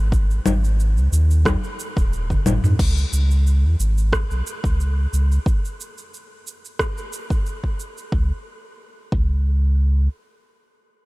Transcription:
Already playing: sub bass G#1
0.12 kick, shaker
0.31 shaker
0.46 sub bass G#1, low conga, shaker
0.64 shaker
0.80 shaker
0.96 sub bass C#2, shaker
1.12 sub bass D#2, shaker
1.31 shaker
1.45 kick, cross-stick, low conga, shaker
1.64 shaker
1.80 shaker
1.97 sub bass D#1, kick, shaker
2.13 shaker
2.30 sub bass F#1, kick, high tom, shaker
2.46 sub bass G#1, mid tom, low conga, shaker
2.64 sub bass G#2, mid tom, shaker
2.79 sub bass C#2, kick, crash, shaker
2.98 shaker
3.12 sub bass C#2, shaker
3.31 shaker
3.47 shaker
3.64 sub bass E2
3.79 sub bass G#1, shaker
3.98 shaker
4.13 kick, cross-stick, shaker
4.30 sub bass B1, shaker
4.47 shaker
4.64 sub bass C#2, kick, shaker
4.80 shaker
5.13 sub bass C#2, shaker
5.32 shaker
5.46 kick, shaker
5.65 shaker
5.81 shaker
5.98 shaker
6.14 shaker
6.47 shaker
6.65 shaker
6.79 kick, cross-stick, shaker
6.98 shaker
7.13 shaker
7.30 kick, shaker
7.46 shaker
7.64 kick
7.80 shaker
7.98 shaker
8.12 sub bass C#2, kick
9.12 sub bass C#2, kick

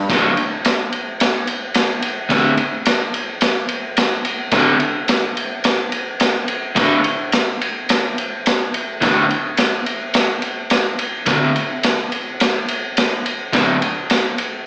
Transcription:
0.09 overdriven electric guitar D2 A2 D3, kick, snare, ride
0.37 ride
0.65 snare, ride
0.92 ride
1.20 snare, ride
1.47 ride
1.74 snare, ride
2.02 ride
2.29 overdriven electric guitar D2 A2 D3, kick, snare, ride
2.57 ride
2.85 snare, ride
3.14 ride
3.41 snare, ride
3.69 ride
3.97 snare, ride
4.25 ride
4.51 overdriven electric guitar D2 A2 D3, kick, snare, ride
4.80 ride
5.08 snare, ride
5.37 ride
5.64 snare, ride
5.92 ride
6.20 snare, ride
6.48 ride
6.75 overdriven electric guitar D2 A2 D3, kick, snare, ride
7.04 ride
7.32 snare, ride
7.61 ride
7.89 snare, ride
8.18 ride
8.46 snare, ride
8.74 ride
9.01 overdriven electric guitar D2 A2 D3, kick, snare, ride
9.30 ride
9.57 snare, ride
9.86 ride
10.14 snare, ride
10.42 ride
10.70 snare, ride
10.99 ride
11.26 overdriven electric guitar D2 A2 D3, kick, snare, ride
11.56 ride
11.83 snare, ride
12.12 ride
12.40 snare, ride
12.68 ride
12.97 snare, ride
13.26 ride
13.53 overdriven electric guitar D2 A2 D3, kick, snare, ride
13.82 ride
14.10 snare, ride
14.38 ride

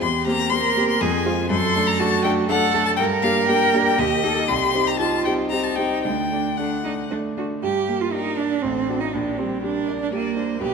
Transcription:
0.02 grand piano E2, cello G4, violin C6
0.26 grand piano A#3 C4 G4, violin A#5
0.50 grand piano A#3 C4 G4, cello A#4, violin C6
0.76 grand piano A#3 C4 G4
0.88 violin C6
1.01 grand piano F2, cello G#4, violin G#5
1.25 grand piano G#3 C4 F4, cello F4
1.50 grand piano F#2, cello A4, violin C6
1.75 grand piano A3 D4 A4
1.87 violin A#5
1.99 grand piano A3 D4 A4, cello F#4, violin A5
2.24 grand piano A3 D4 A4, violin G5
2.49 grand piano A3 D4 A4, cello A4, violin F#5
2.73 grand piano A3 D4 A4
2.86 violin A5
2.96 grand piano G2, cello A#4, violin G5
3.22 grand piano A#3 D4 G4, violin F5
3.48 grand piano A#3 D4 G4, violin G5
3.74 grand piano A#3 D4 G4
3.86 violin G5
3.98 grand piano D#2, cello G4, violin D#5
4.24 grand piano A#3 D#4 G4, cello A4
4.48 grand piano C2, cello G4, violin C6
4.74 grand piano C4 D#4 G4
4.87 violin A#5
4.99 grand piano C4 D#4 G4, cello F4, violin A5
5.25 grand piano C4 D#4 G4, violin G5
5.50 grand piano C4 D#4 G4, cello D#4, violin A#5
5.63 violin A5
5.76 grand piano C4 D#4 G4, violin G5
6.03 grand piano D2, cello D4, violin G5
6.32 grand piano A3 D4
6.57 grand piano A3 D4, cello D4, violin F#5
6.84 grand piano A3 D4, cello D#4
7.11 grand piano A3 D4, cello D4
7.37 grand piano A3 D4, cello F#4
7.63 grand piano G2, cello G4
7.89 grand piano A#3
8.01 cello F4
8.12 grand piano D4, cello D#4, violin A#4
8.37 cello D4, grand piano D5
8.62 grand piano A1, cello C4, violin A4
8.89 grand piano D4 F#4
9.01 cello D#4
9.13 grand piano A#1, cello D4, violin G4
9.37 grand piano G3, cello C4
9.63 cello D4, grand piano G4, violin A#4
9.88 grand piano D5
10.01 cello D4
10.12 cello A#3, grand piano G4, violin D5
10.36 grand piano D4, violin C5
10.61 grand piano B1, cello G4, violin B4

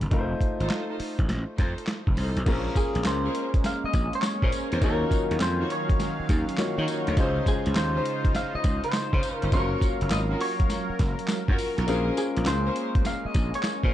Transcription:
0.01 slap bass F#1, closed hi-hat
0.11 slap bass F1, grand piano A3 D#4 F4 A#4, kick, closed hi-hat
0.20 grand piano C5
0.41 kick, closed hi-hat
0.60 slap bass G#1, string section D#4 F4 A4 C5, closed hi-hat
0.70 snare, clap, closed hi-hat
0.89 string section D#4 F4 A4 C5
1.00 muted slap bass stroke, open hi-hat
1.19 slap bass A1, kick, closed hi-hat
1.29 slap bass A1, snare, closed hi-hat
1.58 slap bass F2, string section D#4 F4 A4 C5, kick, snare, closed hi-hat
1.78 closed hi-hat
1.87 snare, clap, closed hi-hat
2.07 slap bass F1, kick
2.17 slap bass C2, string section D#4 F4 A4 C5, open hi-hat
2.36 slap bass B1, closed hi-hat
2.46 slap bass A#1, analog synth pad G#3 A#3 C#4, grand piano A#3 C#4 F4 G#4 A#4, string section C#4 G#4 A#4 C5, kick, closed hi-hat, crash, tambourine
2.76 clean electric guitar G#4, kick, closed hi-hat, tambourine
2.95 slap bass A#1, closed hi-hat
3.04 slap bass C#2, clean electric guitar C5, snare, clap, closed hi-hat, tambourine
3.24 string section C#4 G#4 A#4 C5
3.35 closed hi-hat
3.54 kick, closed hi-hat
3.64 clean electric guitar F5, snare, closed hi-hat, tambourine
3.84 clean electric guitar D#5, muted slap bass stroke
3.93 slap bass A#1, kick, closed hi-hat, tambourine
4.13 clean electric guitar C#5, closed hi-hat
4.22 snare, clap, closed hi-hat, tambourine
4.42 slap bass A#2, string section C#4 G#4 A#4 C5, kick
4.52 closed hi-hat, tambourine
4.71 slap bass E2, string section C#4 G#4 A#4 C5, closed hi-hat
4.82 slap bass D#2, analog synth pad D#3 F#3 F5, grand piano A#3 D#4 F4 F#4 C#5, string section D#4 F4 F#4 C#5, clean electric guitar A#4, kick, closed hi-hat, tambourine
5.11 kick, closed hi-hat, tambourine
5.31 slap bass D#2, closed hi-hat
5.40 slap bass F2, clean electric guitar C5, snare, clap, closed hi-hat, tambourine
5.60 string section D#4 F4 F#4 C#5
5.70 clean electric guitar C#5, closed hi-hat
5.89 kick, closed hi-hat
6.00 snare, closed hi-hat, tambourine
6.20 muted slap bass stroke
6.29 slap bass D#2, kick, closed hi-hat, tambourine
6.49 closed hi-hat
6.57 grand piano A#3 D#4 F4 F#4 C#5, snare, clap, closed hi-hat, tambourine
6.78 slap bass D#3, string section D#4 F4 F#4 C#5
6.88 closed hi-hat, tambourine
7.07 slap bass D2, string section D#4 F4 F#4 C#5, closed hi-hat
7.17 slap bass C#2, analog synth pad C#3 D#4 F4 C5, grand piano G#3 C#4 D#4 F4 C5, string section C#4 D#4 F4 C5, kick, closed hi-hat, tambourine
7.46 clean electric guitar G#4, kick, closed hi-hat, tambourine
7.66 slap bass C#2, closed hi-hat
7.75 slap bass D#2, clean electric guitar C5, snare, clap, closed hi-hat, tambourine
7.95 string section C#4 D#4 F4 C5
8.05 closed hi-hat
8.25 kick, closed hi-hat
8.35 clean electric guitar F5, snare, closed hi-hat, tambourine
8.55 clean electric guitar D#5, muted slap bass stroke
8.64 slap bass C#2, kick, closed hi-hat, tambourine
8.84 clean electric guitar C5, closed hi-hat
8.92 snare, clap, closed hi-hat, tambourine
9.13 slap bass C#3, string section C#4 D#4 F4 C5, kick
9.23 closed hi-hat, tambourine
9.36 clean electric guitar A#4
9.42 slap bass G1, string section C#4 D#4 F4 C5, closed hi-hat
9.52 slap bass F#1, analog synth pad F#3 A#4 F5, grand piano G#3 C#4 F4 F#4 C#5, string section C#4 F4 F#4 A#4, clean electric guitar C#5, kick, closed hi-hat, tambourine
9.59 grand piano A#3
9.81 kick, closed hi-hat, tambourine
10.01 slap bass F#1, closed hi-hat
10.10 slap bass G#1, clean electric guitar D#5, snare, clap, closed hi-hat, tambourine
10.30 string section C#4 F4 F#4 A#4
10.41 clean electric guitar C#5, open hi-hat
10.60 kick, closed hi-hat
10.70 snare, closed hi-hat, tambourine
10.90 muted slap bass stroke
10.99 slap bass F#1, kick, snare, closed hi-hat, tambourine
11.19 closed hi-hat
11.28 snare, clap, closed hi-hat, tambourine
11.48 slap bass F#2, string section C#4 F4 F#4 A#4, kick
11.58 open hi-hat, tambourine
11.77 slap bass B1, string section C#4 F4 F#4 A#4, closed hi-hat
11.87 slap bass A#1, analog synth pad G#3 A#3 C#4, grand piano A#3 C#4 F4 G#4 A#4, string section C#4 G#4 A#4 C5, closed hi-hat, tambourine
12.17 clean electric guitar G#4, closed hi-hat, tambourine
12.37 slap bass A#1, closed hi-hat
12.46 slap bass C#2, clean electric guitar C5, snare, clap, closed hi-hat, tambourine
12.66 string section C#4 G#4 A#4 C5
12.76 closed hi-hat
12.95 kick, closed hi-hat
13.05 clean electric guitar F5, snare, closed hi-hat, tambourine
13.25 clean electric guitar D#5, muted slap bass stroke
13.34 slap bass A#1, kick, closed hi-hat, tambourine
13.54 clean electric guitar C#5, closed hi-hat
13.63 snare, clap, closed hi-hat, tambourine
13.83 slap bass A#2, string section C#4 G#4 A#4 C5, kick

